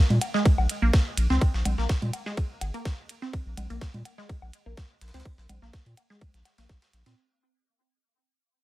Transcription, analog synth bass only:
0.10 0.18 A#2 medium
0.58 0.67 A#1 medium
0.82 0.91 A#1 medium
1.17 1.27 A#1 medium
1.30 1.39 C#2 medium
1.54 1.63 A#1 medium
1.65 1.75 A#1 medium
1.78 1.87 A#1 medium
2.02 2.11 A#2 medium
2.61 2.71 G#1 medium
3.46 3.54 A#1 medium
3.57 3.67 A#1 medium
3.70 3.79 A#1 medium
3.94 4.03 A#2 medium
4.42 4.51 A#1 medium
4.66 4.75 A#1 medium
5.01 5.11 A#1 medium
5.14 5.23 C#2 medium
5.38 5.47 A#1 medium
5.49 5.59 A#1 medium
5.62 5.70 A#1 medium
5.86 5.94 A#2 medium
6.34 6.43 A#1 loud
6.58 6.67 A#1 medium
6.69 6.79 A#1 medium
6.93 7.03 A#1 medium
7.06 7.15 A#2 medium

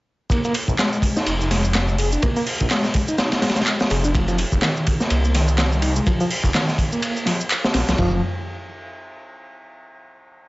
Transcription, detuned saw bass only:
0.68 0.75 A#1 loud
1.27 2.17 F1 loud
2.61 2.67 A#1 loud
3.91 4.44 F1 loud
4.52 4.59 F1 loud
5.11 6.01 C2 loud
6.44 6.51 F1 loud
7.74 7.83 A#1 medium
7.88 7.95 C2 medium
7.99 8.21 F1 loud

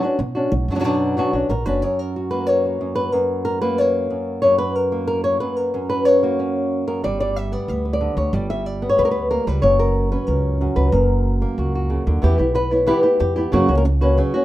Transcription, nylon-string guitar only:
0.03 0.18 C#4 medium
0.03 0.18 D4 medium
0.03 0.18 F#4 medium
0.19 muted nylon-string guitar stroke medium
0.35 0.52 C#4 soft
0.35 0.51 D4 medium
0.35 0.51 F#4 medium
0.52 muted nylon-string guitar stroke medium
0.70 0.74 F#3 medium
0.70 0.74 C#4 medium
0.70 0.75 D4 medium
0.70 0.75 F#4 medium
0.75 0.78 F#3 medium
0.75 0.79 C#4 medium
0.75 0.79 D4 medium
0.75 0.80 F#4 medium
0.80 0.83 F#3 medium
0.80 0.84 C#4 medium
0.80 0.84 D4 medium
0.80 0.84 F#4 medium
0.84 1.16 B2 medium
0.84 1.16 F#3 medium
0.84 1.17 C#4 medium
0.84 1.17 D4 loud
0.84 1.17 F#4 medium
1.17 1.33 B2 medium
1.17 1.33 F#3 medium
1.17 1.33 C#4 medium
1.17 1.33 D4 medium
1.17 1.32 F#4 medium
1.33 1.49 C#4 soft
1.33 1.50 D4 medium
1.33 1.49 F#4 medium
1.50 1.66 A#4 medium
1.50 muted nylon-string guitar stroke medium
1.66 1.82 C#4 soft
1.66 1.82 D4 medium
1.66 1.82 F#4 medium
1.66 1.82 B4 medium
1.82 2.80 F#2 medium
1.82 1.99 C#5 loud
1.99 2.30 A#4 loud
2.16 2.65 F#4 soft
2.31 3.62 A#3 medium
2.31 2.47 B4 medium
2.47 2.95 C#5 loud
2.65 6.15 F#4 soft
2.81 3.13 F#2 medium
2.96 3.12 B4 loud
3.12 4.10 F#2 medium
3.12 3.44 A#4 medium
3.45 3.61 A#4 medium
3.62 4.61 A#3 medium
3.62 3.78 B4 medium
3.78 4.41 C#5 loud
4.10 4.43 F#2 medium
4.42 5.40 F#2 medium
4.42 4.58 C#5 loud
4.58 4.76 B4 medium
4.76 5.06 A#4 medium
4.92 5.71 A#3 medium
5.07 5.23 A#4 loud
5.24 5.40 C#5 medium
5.40 5.73 F#2 medium
5.40 5.57 B4 medium
5.57 5.89 A#4 loud
5.74 6.86 F#2 medium
5.74 6.38 C#4 medium
5.89 6.05 B4 medium
6.05 6.87 C#5 medium
6.23 7.02 A#3 medium
6.23 7.02 F#4 medium
6.39 7.02 C#4 soft
6.87 7.03 F#2 medium
6.87 7.03 A#4 medium
7.04 8.31 G3 medium
7.04 7.19 D5 loud
7.20 7.36 D5 loud
7.36 7.53 E5 loud
7.52 8.31 B3 medium
7.52 7.69 D5 medium
7.69 7.93 E5 loud
7.85 8.32 B4 soft
7.93 8.17 D5 loud
8.01 8.31 D3 medium
8.17 8.34 C#5 medium
8.34 9.46 G3 medium
8.34 8.49 D5 loud
8.50 8.66 E5 loud
8.66 8.89 D5 loud
8.82 9.31 B3 medium
8.89 9.30 C#5 medium
8.99 9.04 B4 loud
9.05 9.11 A#4 medium
9.11 9.30 B4 medium
9.31 9.47 A#3 medium
9.31 9.47 A#4 medium
9.47 9.63 G3 medium
9.47 9.63 B4 medium
9.62 10.60 F#2 medium
9.62 10.11 C#5 medium
9.79 10.11 A#4 medium
10.12 10.91 C#4 medium
10.12 10.27 B4 medium
10.27 10.76 A#4 loud
10.61 10.91 F#2 medium
10.61 10.92 F#4 medium
10.76 10.93 B4 medium
10.92 12.23 F#2 medium
10.92 12.23 A#4 medium
11.42 12.21 A#3 medium
11.59 11.74 F#4 medium
11.75 12.24 F#4 soft
11.90 12.06 C#3 medium
12.07 12.23 D3 medium
12.22 12.38 E3 medium
12.22 12.38 B3 medium
12.22 12.38 E4 medium
12.22 12.37 G4 loud
12.38 12.54 B3 soft
12.38 12.54 E4 medium
12.38 12.54 G4 medium
12.55 12.70 B4 medium
12.55 muted nylon-string guitar stroke medium
12.71 12.86 B3 soft
12.71 12.87 E4 medium
12.71 12.88 C#5 medium
12.87 13.03 E3 medium
12.87 13.03 B3 medium
12.87 13.03 E4 medium
12.87 13.02 G4 medium
12.87 13.02 B4 loud
13.03 13.19 B3 medium
13.03 13.19 E4 medium
13.03 13.19 G4 medium
13.20 13.35 G4 medium
13.20 muted nylon-string guitar stroke medium
13.36 13.53 B3 medium
13.36 13.52 E4 medium
13.36 13.52 G4 medium
13.52 13.68 C#3 medium
13.52 13.68 F#3 medium
13.52 13.69 A#3 medium
13.52 13.68 C#4 medium
13.52 13.67 F#4 medium
13.69 13.84 A#3 medium
13.69 13.84 C#4 medium
13.69 13.77 F#4 medium
13.77 13.85 A#4 medium
13.85 muted nylon-string guitar stroke medium
14.01 14.17 A#3 medium
14.01 14.18 C#4 medium
14.01 14.17 F#4 medium
14.01 14.17 B4 medium
14.17 14.33 C#3 medium
14.17 14.34 F#3 medium
14.34 14.45 A#3 medium
14.34 14.45 C#4 medium
14.34 14.45 F#4 medium

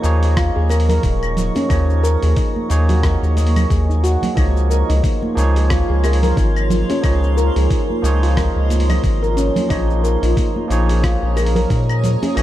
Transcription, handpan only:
0.00 0.35 D#4 medium
0.37 0.54 F4 loud
0.56 0.69 G#4 medium
0.70 0.81 A#4 medium
0.89 1.02 A#4 loud
1.03 1.54 D#4 medium
1.56 1.69 C#4 loud
2.03 2.21 A#4 loud
2.23 2.35 G#4 medium
2.37 2.88 D#4 medium
2.89 3.03 F#4 medium
3.03 3.21 A#4 medium
3.37 3.54 D#5 medium
3.70 3.88 G#4 medium
3.90 4.03 D#4 medium
4.04 4.22 F#4 loud
4.37 4.55 D#4 loud
4.70 4.89 A#4 medium
4.89 5.02 D#4 loud
5.04 5.69 D#4 medium
5.71 5.88 F4 loud
5.90 6.03 G#4 medium
6.04 6.15 A#4 medium
6.23 6.36 A#4 loud
6.37 6.88 D#4 medium
6.90 7.03 C#4 loud
7.37 7.54 A#4 loud
7.56 7.69 G#4 medium
7.70 8.21 D#4 medium
8.23 8.36 F4 medium
8.37 8.88 A#4 medium
8.89 9.21 D#5 medium
9.23 9.35 A#4 medium
9.37 9.69 C#4 loud
9.70 9.89 D#4 loud
10.04 10.22 A#4 medium
10.23 10.35 D#4 loud
10.37 11.02 D#4 medium
11.03 11.21 F4 loud
11.22 11.36 G#4 medium
11.37 11.48 A#4 medium
11.56 11.69 A#4 loud
11.70 12.21 D#4 medium
12.22 12.36 C#4 loud

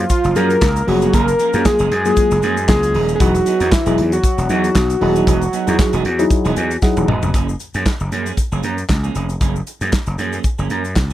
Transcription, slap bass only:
0.25 0.33 F#1 loud
0.36 0.55 F#2 loud
0.62 0.81 C#2 loud
0.88 1.07 F1 medium
1.14 1.33 F#1 loud
1.54 1.62 F#2 loud
1.80 1.88 F#1 medium
1.91 2.10 F#2 loud
2.31 2.40 F#1 medium
2.43 2.70 F#2 loud
2.69 2.96 C#2 medium
2.95 3.14 D#1 medium
3.20 3.40 E1 loud
3.60 3.69 E2 medium
3.86 3.99 E1 medium
3.98 4.17 E2 loud
4.38 4.47 E1 medium
4.49 4.69 E2 loud
4.75 4.95 B1 loud
5.01 5.21 D#1 medium
5.27 5.46 E1 loud
5.68 5.76 E2 loud
5.93 6.02 E1 loud
6.05 6.24 E2 loud
6.45 6.54 E1 loud
6.57 6.76 E2 loud
6.97 7.05 D#1 medium
7.08 7.19 E1 medium
7.23 7.31 F1 medium
7.34 7.53 F#1 medium
7.75 7.83 F#2 medium
8.01 8.09 F#1 medium
8.12 8.31 F#2 medium
8.52 8.61 F#1 loud
8.64 8.83 F#2 medium
8.89 9.08 C#2 medium
9.15 9.34 F1 medium
9.41 9.60 F#1 loud
9.81 9.90 F#2 medium
10.07 10.16 F#1 medium
10.18 10.38 F#2 loud
10.59 10.67 F#1 medium
10.70 10.98 F#2 medium
10.96 11.13 C#2 medium

